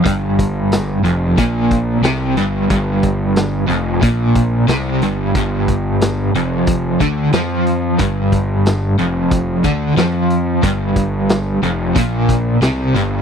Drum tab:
HH |xxxxxxxx|xxxxxxxx|xxxxxxxx|xxxxxxxx|
SD |--o---o-|--o---o-|--o---o-|--o---o-|
BD |oo--oo--|oo--oo--|oo--oo--|oo--oo--|

HH |xxxxxxxx|
SD |--o---o-|
BD |oo--oo--|